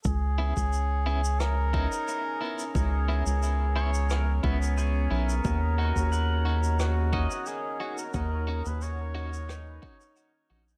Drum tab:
SH |x--xx--xx--xx--x|x--xx--xx--xx--x|x--xx--xx--xx--x|x--xx--xx--xx--x|
SD |--------r-------|--------r-------|--------r-------|--------r-------|
BD |o--o------o-----|o---------o-----|o--o------o-----|o---------o-----|